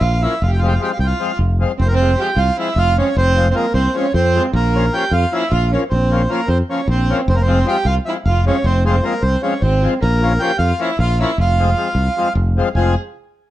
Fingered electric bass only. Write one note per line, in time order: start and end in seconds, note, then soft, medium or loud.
0.01 0.25 A#1 loud
0.42 0.76 F1 medium
0.99 1.12 C2 medium
1.39 1.63 F1 medium
1.80 2.14 F1 loud
2.36 2.49 C2 medium
2.76 3.00 F1 medium
3.16 3.51 F1 loud
3.74 3.87 C2 medium
4.14 4.38 F2 medium
4.53 4.88 A#1 loud
5.11 5.24 F2 medium
5.52 5.75 A#1 loud
5.92 6.26 A#1 medium
6.48 6.61 F2 medium
6.88 7.12 A#1 medium
7.28 7.62 F1 loud
7.85 7.98 C2 medium
8.26 8.49 F1 medium
8.64 8.99 F1 loud
9.23 9.35 C2 medium
9.62 9.86 G#1 medium
10.02 10.37 A#1 loud
10.59 10.71 F2 medium
10.99 11.23 A#1 medium
11.38 11.73 F1 medium
11.95 12.08 C2 medium
12.35 12.60 F1 medium
12.75 12.94 F1 medium